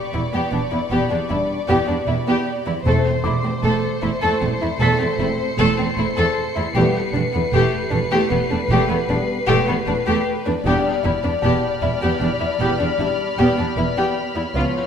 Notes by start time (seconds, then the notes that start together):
Already playing: B4 D5 B5 C#6 D6
0.13 E1 E2 B3 E4
0.33 E2 B3 G4
0.52 E1 E2 B3 D4
0.72 E2 B3 E4
0.91 E1 E2 B3 G4
1.11 E2 B3 D4
1.30 E1 E2 G3 B3 D4 E4
1.68 E1 E2 B3 G4
1.88 E2 B3 D4
2.07 E1 E2 B3 E4
2.27 E2 B3 G4
2.66 E2 B3 E4
2.85 E1 E2 A3 C4 A4 C5 C7
3.24 E1 E2 A3 E4 D6
3.44 E2 A3 C4
3.63 E1 E2 A3 A4 C#7
4.03 E1 E2 A3 E4
4.21 E2 A3 A4
4.42 E1 E2 A3 C4
4.61 E2 A3 E4
4.80 E1 E2 A3 A4 B6
5.00 E2 A3 C4
5.19 E1 E2 A3 C4 E4
5.58 E1 E2 A3 A4
5.78 E2 A3 C4
5.97 E1 E2 A3 E4
6.17 E2 A3 A4
6.56 E2 A3 E4
6.75 E1 E2 G3 A3 B3 G4 B4
7.13 E1 E2 A3 D4
7.33 E2 A3 B3
7.52 E1 E2 A3 G4
7.91 E1 E2 A3 D4
8.12 E2 A3 G4
8.31 E1 E2 A3 B3
8.51 E2 A3 D4
8.59 C7
8.70 E1 E2 A3 G4
8.89 E2 A3 B3
9.09 E1 E2 G3 A3 B3 D4
9.47 E1 E2 A3 G4
9.68 E2 A3 B3
9.87 E1 E2 A3 D4
10.06 E2 A3 G4
10.46 E2 A3 D4
10.64 E1 E2 G3 B3 D4 G4 D5 G5 B5 F6
11.04 E1 E2 B3 E4
11.23 E2 B3 D4
11.42 E1 E2 B3 G4 A5
11.82 E1 E2 B3 E4
12.01 E2 B3 G4
12.21 E1 E2 B3 D4
12.40 E2 B3 E4
12.60 E1 E2 B3 G4
12.80 E2 B3 D4
12.99 E1 E2 G3 B3 D4 E4
13.38 E1 E2 B3 G4
13.58 E2 B3 D4
13.77 E1 E2 B3 E4 B4
13.97 E2 B3 G4
14.36 E2 B3 E4
14.54 C#2 F3 B3 F4 C#5, reverse cymbal